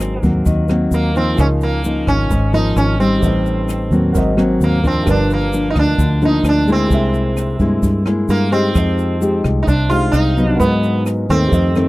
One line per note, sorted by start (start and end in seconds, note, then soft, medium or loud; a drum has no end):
0.00 0.19 G#1 loud
0.00 0.43 G#2 medium
0.00 0.19 F#3 medium
0.00 0.19 A#3 medium
0.00 0.19 C4 medium
0.00 0.21 C4 medium
0.00 1.32 F#4 soft
0.00 1.33 A#4 soft
0.00 1.34 C5 soft
0.00 1.35 D#5 medium
0.00 cross-stick soft
0.00 closed hi-hat soft
0.00 shaker medium
0.21 0.44 D#2 medium
0.21 0.65 F#3 medium
0.21 0.65 A#3 medium
0.21 0.66 C4 medium
0.21 kick medium
0.21 closed hi-hat soft
0.21 shaker soft
0.45 0.89 D#2 medium
0.45 1.35 D#3 medium
0.45 kick medium
0.45 closed hi-hat medium
0.45 shaker medium
0.68 1.11 F#3 medium
0.68 1.11 A#3 medium
0.68 1.12 C4 medium
0.68 cross-stick medium
0.68 closed hi-hat soft
0.68 shaker soft
0.91 1.34 D#2 medium
0.91 1.17 A#3 medium
0.91 closed hi-hat soft
0.91 shaker medium
1.15 1.81 F3 medium
1.15 1.81 A#3 medium
1.15 1.40 C4 medium
1.15 1.81 D#4 medium
1.15 closed hi-hat soft
1.15 shaker soft
1.34 3.17 F4 soft
1.34 3.18 G#4 soft
1.34 3.19 A#4 soft
1.34 shaker medium
1.38 2.03 C#2 medium
1.38 2.28 C#3 medium
1.38 1.46 C#4 medium
1.38 3.20 D#5 medium
1.38 kick medium
1.38 cross-stick medium
1.38 closed hi-hat medium
1.61 2.08 A#3 medium
1.61 closed hi-hat soft
1.61 shaker soft
1.84 2.30 F3 medium
1.84 2.31 A#3 medium
1.84 2.31 D#4 medium
1.84 closed hi-hat soft
1.84 shaker medium
2.07 2.29 G#1 medium
2.07 2.54 C#4 loud
2.07 kick medium
2.07 cross-stick medium
2.07 closed hi-hat soft
2.07 shaker soft
2.30 2.73 G#1 medium
2.30 3.20 G#2 medium
2.30 kick medium
2.30 closed hi-hat medium
2.30 shaker medium
2.53 2.95 F3 medium
2.53 2.96 A#3 medium
2.53 2.96 D#4 medium
2.53 2.77 D#4 medium
2.53 closed hi-hat soft
2.53 shaker soft
2.76 3.19 G#1 loud
2.76 3.00 C#4 loud
2.76 cross-stick medium
2.76 closed hi-hat soft
2.76 shaker medium
3.00 3.88 G3 medium
3.00 3.88 C4 medium
3.00 4.34 C4 medium
3.00 3.88 D#4 medium
3.00 closed hi-hat soft
3.00 shaker soft
3.19 3.87 A1 loud
3.19 4.12 A2 medium
3.19 4.11 G4 soft
3.19 4.12 B4 soft
3.19 kick medium
3.19 closed hi-hat medium
3.19 shaker medium
3.23 4.13 C5 soft
3.23 4.14 D#5 medium
3.46 closed hi-hat soft
3.46 shaker soft
3.69 cross-stick medium
3.69 closed hi-hat soft
3.69 shaker medium
3.90 4.12 D#2 medium
3.90 4.34 F#3 medium
3.90 4.34 A#3 medium
3.90 4.34 C4 medium
3.90 closed hi-hat soft
3.90 shaker soft
4.12 4.58 G#1 medium
4.12 5.04 G#2 medium
4.12 5.04 F#4 medium
4.12 5.05 A#4 medium
4.12 5.06 C5 medium
4.12 kick medium
4.12 closed hi-hat medium
4.12 shaker medium
4.18 5.07 D#5 medium
4.37 4.80 F#3 medium
4.37 4.80 A#3 medium
4.37 4.80 C4 medium
4.37 cross-stick medium
4.37 closed hi-hat soft
4.37 shaker soft
4.61 5.03 D#2 medium
4.61 4.86 A#3 medium
4.61 closed hi-hat soft
4.61 shaker medium
4.83 5.49 F3 medium
4.83 5.49 A#3 medium
4.83 5.09 C4 medium
4.83 5.49 D4 medium
4.83 kick soft
4.83 closed hi-hat soft
4.83 shaker soft
5.03 5.72 G1 medium
5.03 5.96 G2 medium
5.03 6.85 F4 soft
5.03 6.86 G4 soft
5.03 6.87 A#4 soft
5.03 kick medium
5.03 cross-stick medium
5.03 closed hi-hat medium
5.07 5.32 D4 medium
5.07 6.89 D5 medium
5.07 shaker medium
5.30 5.68 A#3 medium
5.30 closed hi-hat soft
5.30 shaker soft
5.53 6.18 F3 medium
5.53 6.18 A#3 medium
5.53 6.18 D4 medium
5.53 closed hi-hat soft
5.53 shaker medium
5.70 5.76 D#4 medium
5.76 5.97 D2 medium
5.76 6.25 D4 loud
5.76 kick medium
5.76 cross-stick medium
5.76 closed hi-hat soft
5.76 shaker soft
5.98 6.41 D2 medium
5.98 6.88 D3 medium
5.98 kick medium
5.98 closed hi-hat medium
5.98 shaker medium
6.21 6.64 F3 medium
6.21 6.64 A#3 medium
6.21 6.64 D4 medium
6.21 6.47 D#4 medium
6.21 closed hi-hat soft
6.21 shaker soft
6.43 6.87 D2 medium
6.43 cross-stick medium
6.43 closed hi-hat soft
6.43 shaker medium
6.49 6.70 D4 loud
6.67 7.56 G#3 medium
6.67 7.56 A#3 medium
6.67 7.57 E4 medium
6.67 closed hi-hat soft
6.67 shaker soft
6.72 8.04 C4 medium
6.88 7.56 C2 medium
6.88 7.81 C3 medium
6.88 8.70 G4 soft
6.88 8.71 G#4 soft
6.88 kick medium
6.88 closed hi-hat soft
6.88 shaker medium
6.92 8.72 A#4 soft
6.92 8.73 E5 medium
7.13 closed hi-hat soft
7.13 shaker soft
7.37 cross-stick soft
7.37 closed hi-hat soft
7.37 shaker medium
7.59 7.81 G2 medium
7.59 8.02 G#3 medium
7.59 8.03 A#3 medium
7.59 8.03 E4 medium
7.59 kick medium
7.59 closed hi-hat soft
7.59 shaker soft
7.82 8.25 G2 medium
7.82 kick medium
7.82 closed hi-hat medium
7.82 shaker medium
8.06 8.48 G#3 medium
8.06 8.49 A#3 medium
8.06 8.49 E4 medium
8.06 cross-stick medium
8.06 closed hi-hat soft
8.06 shaker soft
8.29 8.72 G2 medium
8.29 8.51 A#3 loud
8.29 closed hi-hat medium
8.29 shaker medium
8.52 9.17 G#3 medium
8.52 9.41 C4 loud
8.52 9.18 D#4 medium
8.52 9.18 G4 medium
8.52 closed hi-hat soft
8.52 shaker soft
8.72 9.40 F2 loud
8.72 9.65 F3 medium
8.72 9.87 G4 medium
8.72 9.89 C5 soft
8.72 kick medium
8.72 cross-stick medium
8.72 closed hi-hat medium
8.72 shaker medium
8.78 9.90 D#5 medium
8.98 closed hi-hat soft
8.98 shaker soft
9.21 9.67 G#3 medium
9.21 9.67 D#4 medium
9.21 9.67 G4 medium
9.21 closed hi-hat soft
9.21 shaker medium
9.44 9.66 C2 medium
9.44 kick medium
9.44 cross-stick medium
9.44 closed hi-hat soft
9.44 shaker soft
9.63 9.68 D#4 medium
9.67 10.10 C2 medium
9.67 10.57 C3 medium
9.67 9.89 D4 medium
9.67 kick medium
9.67 closed hi-hat medium
9.67 shaker medium
9.89 10.33 G#3 medium
9.89 10.33 D#4 medium
9.89 10.14 F4 loud
9.89 10.59 G4 soft
9.89 10.33 G4 medium
9.89 10.60 C5 soft
9.89 10.61 F5 soft
9.89 closed hi-hat soft
9.89 shaker soft
10.12 10.56 C2 loud
10.12 10.49 D#4 loud
10.12 cross-stick medium
10.12 closed hi-hat soft
10.12 shaker medium
10.37 11.26 F#3 medium
10.37 11.26 B3 medium
10.37 11.26 D#4 medium
10.37 closed hi-hat soft
10.37 shaker soft
10.49 10.59 D4 loud
10.56 11.03 B3 medium
10.56 11.48 F#4 soft
10.56 11.49 A#4 soft
10.60 11.50 G#2 medium
10.60 11.25 G#2 medium
10.60 11.50 B4 soft
10.60 11.51 D#5 medium
10.60 kick medium
10.60 closed hi-hat medium
10.60 shaker medium
10.83 closed hi-hat soft
10.83 shaker soft
11.06 cross-stick medium
11.06 closed hi-hat soft
11.06 shaker medium
11.29 11.51 D#2 medium
11.29 11.72 D#3 medium
11.29 11.72 A3 medium
11.29 11.88 C4 loud
11.29 11.73 C4 medium
11.29 closed hi-hat soft
11.29 shaker soft
11.48 11.88 G4 soft
11.48 11.88 A4 soft
11.48 11.88 C5 soft
11.52 11.88 F2 medium
11.52 11.88 F2 soft
11.52 11.88 D#5 medium
11.52 kick medium
11.52 closed hi-hat medium
11.52 shaker medium
11.75 11.88 D#3 medium
11.75 11.88 A3 medium
11.75 11.88 C4 medium
11.75 cross-stick medium
11.75 closed hi-hat soft
11.75 shaker soft